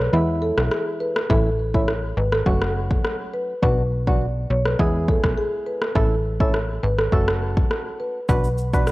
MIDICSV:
0, 0, Header, 1, 5, 480
1, 0, Start_track
1, 0, Key_signature, 3, "major"
1, 0, Tempo, 582524
1, 1069, Time_signature, 4, 2, 24, 8
1, 7349, End_track
2, 0, Start_track
2, 0, Title_t, "Marimba"
2, 0, Program_c, 0, 12
2, 346, Note_on_c, 0, 69, 77
2, 438, Note_off_c, 0, 69, 0
2, 587, Note_on_c, 0, 68, 78
2, 679, Note_off_c, 0, 68, 0
2, 826, Note_on_c, 0, 71, 75
2, 919, Note_off_c, 0, 71, 0
2, 1069, Note_on_c, 0, 69, 101
2, 1160, Note_off_c, 0, 69, 0
2, 1435, Note_on_c, 0, 73, 72
2, 1516, Note_off_c, 0, 73, 0
2, 1790, Note_on_c, 0, 71, 78
2, 1881, Note_off_c, 0, 71, 0
2, 1915, Note_on_c, 0, 69, 77
2, 1996, Note_off_c, 0, 69, 0
2, 2748, Note_on_c, 0, 71, 75
2, 2840, Note_off_c, 0, 71, 0
2, 2989, Note_on_c, 0, 71, 94
2, 3162, Note_off_c, 0, 71, 0
2, 3355, Note_on_c, 0, 74, 73
2, 3437, Note_off_c, 0, 74, 0
2, 3708, Note_on_c, 0, 73, 78
2, 3800, Note_off_c, 0, 73, 0
2, 3834, Note_on_c, 0, 71, 72
2, 3916, Note_off_c, 0, 71, 0
2, 4187, Note_on_c, 0, 69, 72
2, 4279, Note_off_c, 0, 69, 0
2, 4429, Note_on_c, 0, 68, 85
2, 4520, Note_off_c, 0, 68, 0
2, 4668, Note_on_c, 0, 71, 73
2, 4760, Note_off_c, 0, 71, 0
2, 4907, Note_on_c, 0, 69, 102
2, 4999, Note_off_c, 0, 69, 0
2, 5276, Note_on_c, 0, 73, 73
2, 5357, Note_off_c, 0, 73, 0
2, 5628, Note_on_c, 0, 71, 81
2, 5720, Note_off_c, 0, 71, 0
2, 5754, Note_on_c, 0, 69, 78
2, 5836, Note_off_c, 0, 69, 0
2, 6589, Note_on_c, 0, 71, 74
2, 6680, Note_off_c, 0, 71, 0
2, 6829, Note_on_c, 0, 71, 96
2, 7002, Note_off_c, 0, 71, 0
2, 7196, Note_on_c, 0, 74, 71
2, 7277, Note_off_c, 0, 74, 0
2, 7349, End_track
3, 0, Start_track
3, 0, Title_t, "Synth stab"
3, 0, Program_c, 1, 62
3, 106, Note_on_c, 1, 52, 94
3, 108, Note_on_c, 1, 56, 88
3, 109, Note_on_c, 1, 59, 90
3, 111, Note_on_c, 1, 64, 107
3, 995, Note_off_c, 1, 52, 0
3, 996, Note_off_c, 1, 56, 0
3, 996, Note_off_c, 1, 59, 0
3, 997, Note_off_c, 1, 64, 0
3, 1066, Note_on_c, 1, 52, 91
3, 1067, Note_on_c, 1, 57, 83
3, 1069, Note_on_c, 1, 61, 83
3, 1070, Note_on_c, 1, 64, 100
3, 1230, Note_off_c, 1, 52, 0
3, 1231, Note_off_c, 1, 57, 0
3, 1232, Note_off_c, 1, 61, 0
3, 1232, Note_off_c, 1, 64, 0
3, 1434, Note_on_c, 1, 52, 77
3, 1436, Note_on_c, 1, 57, 70
3, 1437, Note_on_c, 1, 61, 70
3, 1439, Note_on_c, 1, 64, 88
3, 1588, Note_off_c, 1, 52, 0
3, 1589, Note_off_c, 1, 57, 0
3, 1590, Note_off_c, 1, 61, 0
3, 1591, Note_off_c, 1, 64, 0
3, 2026, Note_on_c, 1, 54, 97
3, 2028, Note_on_c, 1, 57, 85
3, 2029, Note_on_c, 1, 61, 87
3, 2031, Note_on_c, 1, 66, 102
3, 2915, Note_off_c, 1, 54, 0
3, 2916, Note_off_c, 1, 57, 0
3, 2917, Note_off_c, 1, 61, 0
3, 2917, Note_off_c, 1, 66, 0
3, 2986, Note_on_c, 1, 54, 90
3, 2988, Note_on_c, 1, 59, 79
3, 2989, Note_on_c, 1, 62, 85
3, 2991, Note_on_c, 1, 66, 99
3, 3150, Note_off_c, 1, 54, 0
3, 3151, Note_off_c, 1, 59, 0
3, 3152, Note_off_c, 1, 62, 0
3, 3153, Note_off_c, 1, 66, 0
3, 3355, Note_on_c, 1, 54, 76
3, 3357, Note_on_c, 1, 59, 68
3, 3358, Note_on_c, 1, 62, 71
3, 3360, Note_on_c, 1, 66, 88
3, 3508, Note_off_c, 1, 54, 0
3, 3509, Note_off_c, 1, 59, 0
3, 3510, Note_off_c, 1, 62, 0
3, 3511, Note_off_c, 1, 66, 0
3, 3947, Note_on_c, 1, 56, 95
3, 3949, Note_on_c, 1, 59, 89
3, 3951, Note_on_c, 1, 64, 88
3, 3952, Note_on_c, 1, 68, 106
3, 4835, Note_off_c, 1, 56, 0
3, 4836, Note_off_c, 1, 59, 0
3, 4837, Note_off_c, 1, 64, 0
3, 4838, Note_off_c, 1, 68, 0
3, 4905, Note_on_c, 1, 57, 88
3, 4907, Note_on_c, 1, 61, 84
3, 4908, Note_on_c, 1, 64, 84
3, 4910, Note_on_c, 1, 69, 98
3, 5070, Note_off_c, 1, 57, 0
3, 5071, Note_off_c, 1, 61, 0
3, 5071, Note_off_c, 1, 64, 0
3, 5072, Note_off_c, 1, 69, 0
3, 5274, Note_on_c, 1, 57, 77
3, 5276, Note_on_c, 1, 61, 68
3, 5276, Note_on_c, 1, 64, 71
3, 5279, Note_on_c, 1, 69, 86
3, 5428, Note_off_c, 1, 57, 0
3, 5429, Note_off_c, 1, 61, 0
3, 5429, Note_off_c, 1, 64, 0
3, 5430, Note_off_c, 1, 69, 0
3, 5867, Note_on_c, 1, 57, 97
3, 5868, Note_on_c, 1, 61, 87
3, 5870, Note_on_c, 1, 66, 87
3, 5871, Note_on_c, 1, 69, 100
3, 6755, Note_off_c, 1, 57, 0
3, 6756, Note_off_c, 1, 61, 0
3, 6757, Note_off_c, 1, 66, 0
3, 6758, Note_off_c, 1, 69, 0
3, 6827, Note_on_c, 1, 59, 89
3, 6828, Note_on_c, 1, 62, 81
3, 6830, Note_on_c, 1, 66, 85
3, 6831, Note_on_c, 1, 71, 98
3, 6991, Note_off_c, 1, 59, 0
3, 6991, Note_off_c, 1, 62, 0
3, 6992, Note_off_c, 1, 66, 0
3, 6993, Note_off_c, 1, 71, 0
3, 7195, Note_on_c, 1, 59, 76
3, 7196, Note_on_c, 1, 62, 73
3, 7199, Note_on_c, 1, 66, 73
3, 7200, Note_on_c, 1, 71, 87
3, 7349, Note_off_c, 1, 59, 0
3, 7349, Note_off_c, 1, 62, 0
3, 7349, Note_off_c, 1, 66, 0
3, 7349, Note_off_c, 1, 71, 0
3, 7349, End_track
4, 0, Start_track
4, 0, Title_t, "Analog synth bass"
4, 0, Program_c, 2, 38
4, 109, Note_on_c, 2, 40, 104
4, 429, Note_off_c, 2, 40, 0
4, 476, Note_on_c, 2, 35, 96
4, 574, Note_off_c, 2, 35, 0
4, 1069, Note_on_c, 2, 33, 111
4, 1756, Note_off_c, 2, 33, 0
4, 1789, Note_on_c, 2, 32, 100
4, 1998, Note_off_c, 2, 32, 0
4, 2029, Note_on_c, 2, 30, 97
4, 2447, Note_off_c, 2, 30, 0
4, 2990, Note_on_c, 2, 35, 114
4, 3676, Note_off_c, 2, 35, 0
4, 3708, Note_on_c, 2, 35, 95
4, 3918, Note_off_c, 2, 35, 0
4, 3947, Note_on_c, 2, 40, 101
4, 4268, Note_off_c, 2, 40, 0
4, 4315, Note_on_c, 2, 35, 96
4, 4414, Note_off_c, 2, 35, 0
4, 4908, Note_on_c, 2, 33, 108
4, 5595, Note_off_c, 2, 33, 0
4, 5629, Note_on_c, 2, 32, 98
4, 5838, Note_off_c, 2, 32, 0
4, 5868, Note_on_c, 2, 30, 100
4, 6287, Note_off_c, 2, 30, 0
4, 6829, Note_on_c, 2, 35, 110
4, 7349, Note_off_c, 2, 35, 0
4, 7349, End_track
5, 0, Start_track
5, 0, Title_t, "Drums"
5, 475, Note_on_c, 9, 37, 96
5, 557, Note_off_c, 9, 37, 0
5, 589, Note_on_c, 9, 37, 88
5, 671, Note_off_c, 9, 37, 0
5, 956, Note_on_c, 9, 37, 98
5, 1038, Note_off_c, 9, 37, 0
5, 1069, Note_on_c, 9, 36, 113
5, 1152, Note_off_c, 9, 36, 0
5, 1436, Note_on_c, 9, 36, 87
5, 1519, Note_off_c, 9, 36, 0
5, 1549, Note_on_c, 9, 37, 88
5, 1632, Note_off_c, 9, 37, 0
5, 1915, Note_on_c, 9, 37, 95
5, 1997, Note_off_c, 9, 37, 0
5, 2028, Note_on_c, 9, 36, 86
5, 2111, Note_off_c, 9, 36, 0
5, 2156, Note_on_c, 9, 37, 97
5, 2239, Note_off_c, 9, 37, 0
5, 2396, Note_on_c, 9, 36, 95
5, 2478, Note_off_c, 9, 36, 0
5, 2509, Note_on_c, 9, 37, 92
5, 2592, Note_off_c, 9, 37, 0
5, 2989, Note_on_c, 9, 36, 115
5, 3072, Note_off_c, 9, 36, 0
5, 3356, Note_on_c, 9, 36, 87
5, 3438, Note_off_c, 9, 36, 0
5, 3834, Note_on_c, 9, 37, 92
5, 3916, Note_off_c, 9, 37, 0
5, 3947, Note_on_c, 9, 36, 89
5, 4030, Note_off_c, 9, 36, 0
5, 4187, Note_on_c, 9, 36, 97
5, 4270, Note_off_c, 9, 36, 0
5, 4313, Note_on_c, 9, 37, 97
5, 4315, Note_on_c, 9, 36, 98
5, 4396, Note_off_c, 9, 37, 0
5, 4397, Note_off_c, 9, 36, 0
5, 4794, Note_on_c, 9, 37, 97
5, 4877, Note_off_c, 9, 37, 0
5, 4908, Note_on_c, 9, 36, 116
5, 4991, Note_off_c, 9, 36, 0
5, 5275, Note_on_c, 9, 36, 90
5, 5358, Note_off_c, 9, 36, 0
5, 5388, Note_on_c, 9, 37, 84
5, 5470, Note_off_c, 9, 37, 0
5, 5754, Note_on_c, 9, 37, 89
5, 5837, Note_off_c, 9, 37, 0
5, 5868, Note_on_c, 9, 36, 90
5, 5950, Note_off_c, 9, 36, 0
5, 5997, Note_on_c, 9, 37, 100
5, 6079, Note_off_c, 9, 37, 0
5, 6235, Note_on_c, 9, 36, 102
5, 6318, Note_off_c, 9, 36, 0
5, 6350, Note_on_c, 9, 37, 92
5, 6432, Note_off_c, 9, 37, 0
5, 6828, Note_on_c, 9, 36, 114
5, 6828, Note_on_c, 9, 82, 75
5, 6911, Note_off_c, 9, 36, 0
5, 6911, Note_off_c, 9, 82, 0
5, 6953, Note_on_c, 9, 82, 50
5, 7036, Note_off_c, 9, 82, 0
5, 7068, Note_on_c, 9, 82, 51
5, 7150, Note_off_c, 9, 82, 0
5, 7195, Note_on_c, 9, 36, 92
5, 7197, Note_on_c, 9, 82, 68
5, 7278, Note_off_c, 9, 36, 0
5, 7279, Note_off_c, 9, 82, 0
5, 7308, Note_on_c, 9, 37, 86
5, 7308, Note_on_c, 9, 82, 76
5, 7349, Note_off_c, 9, 37, 0
5, 7349, Note_off_c, 9, 82, 0
5, 7349, End_track
0, 0, End_of_file